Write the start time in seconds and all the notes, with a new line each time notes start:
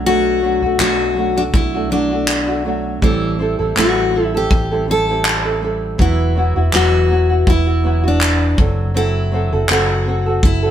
Already playing: B1
0.06 B2 F#3 A3 D4 F#4
0.42 F#3 A3 D4 F#4
0.62 B1 A3 D4 F#4
0.79 B1 B2 F#3 A3 D4 F#4, clap
1.16 F#3 A3 D4 F#4
1.36 A3 D4 F#4
1.53 B1 E4, kick
1.74 A3 D4 F#4
1.90 F#3 A3 D4 F#4
2.11 A3 D4 F#4
2.28 clap
2.48 A3 D4 F#4
2.65 F#3 A3 D4 F#4
3.02 A1 A2 E3 G3 C4 E4 A4, kick
3.38 G3 C4 E4 A4
3.59 A1 G3 C4 E4 A4
3.76 A1 A2 E3 G3 C4 E4 F#4 A4, clap
4.14 G3 C4 E4 A4
4.25 E4
4.34 G3 C4 E4 G4 A4
4.51 A1, kick
4.71 G3 C4 E4 A4
4.88 G3 C4 E4 A4
5.09 G3 C4 E4 A4
5.25 clap
5.45 G3 C4 E4 A4
5.61 G3 C4 E4 A4
5.98 E1 E3 F#3 B3 E4 F#4, kick
6.35 F#3 B3 E4 F#4
6.56 E1 B3 E4 F#4
6.72 E1 E3 F#3 B3 E4 F#4, clap
7.10 F#3 B3 E4 F#4
7.29 B3 E4 F#4
7.47 E1 E4, kick
7.66 B3 E4 F#4
7.83 F#3 B3 E4 F#4
8.03 B3 E4 F#4
8.08 D4
8.21 clap
8.57 F#1 F#3 C4 F#4 A4, kick
8.94 F#3 C4 E4 F#4 A4
9.32 F#3 C4 F#4 A4
9.52 F#1 F#4 A4
9.56 C4
9.68 F#1 F#3 C4 F#4 A4, clap
10.06 F#3 C4 F#4 A4
10.26 C4 F#4 A4
10.43 F#1 E4, kick
10.63 C4 F#4 A4